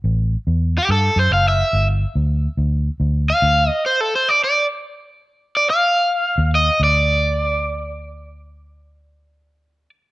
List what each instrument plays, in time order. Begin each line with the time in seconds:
0.04 fingered electric bass A1
0.47 fingered electric bass E2
0.78 overdriven electric guitar G4
0.89 fingered electric bass G2, overdriven electric guitar A4
1.16 fingered electric bass F#2, overdriven electric guitar C5
1.31 fingered electric bass F#1, overdriven electric guitar F5
1.48 overdriven electric guitar E5
1.73 fingered electric bass G1
2.15 fingered electric bass D2
2.57 fingered electric bass D2
3.00 fingered electric bass D2
3.30 overdriven electric guitar F5
3.42 fingered electric bass D2
3.69 overdriven electric guitar D#5
3.86 overdriven electric guitar C5
4.01 overdriven electric guitar A4
4.16 overdriven electric guitar C5
4.29 overdriven electric guitar D5
4.44 overdriven electric guitar D5
5.57 overdriven electric guitar D5
5.70 overdriven electric guitar F5
6.38 fingered electric bass D#2
6.55 overdriven electric guitar D#5
6.80 fingered electric bass D2, overdriven electric guitar D5